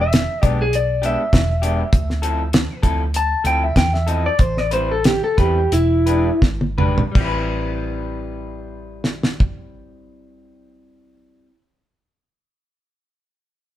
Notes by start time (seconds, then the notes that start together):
Already playing: E1
0.01 E5
0.13 snare, closed hi-hat
0.42 B1 G#3 B3 D4 G4 D5, kick, closed hi-hat
0.62 G#4
0.73 D5, closed hi-hat
1.02 G#3 B3 D4 G4 E5, closed hi-hat
1.33 E1, kick, snare, closed hi-hat
1.62 G#3 B3 D4 G4, closed hi-hat
1.93 D2, kick, closed hi-hat
2.10 snare
2.22 F3 C4 E4 A4, closed hi-hat
2.53 snare, closed hi-hat
2.83 D2 F3 C4 E4 A4, kick, closed hi-hat
3.14 A5, closed hi-hat
3.44 D2 F3 C4 E4 A4 G5, closed hi-hat
3.64 E5
3.76 E2 G5, kick, snare, closed hi-hat
3.93 E5, snare
4.07 F3 C4 E4 A4 D#5, closed hi-hat
4.26 D5
4.39 A1 C5, kick, closed hi-hat
4.57 D5, snare
4.71 G3 C4 E4 B4 C5, closed hi-hat
4.91 A4
5.04 G4, snare, closed hi-hat
5.24 A4
5.37 E2 G3 C4 E4 G4 B4, kick, closed hi-hat
5.72 E1 E4, closed hi-hat
6.06 G#3 D4 G4 B4, closed hi-hat
6.42 G#1, kick, snare
6.61 high tom
6.78 G#3 D4 G4 B4, mid tom
6.98 floor tom
7.12 A1 G3, kick, crash
7.17 C4
7.21 E4 B4
9.04 snare
9.23 snare
9.40 kick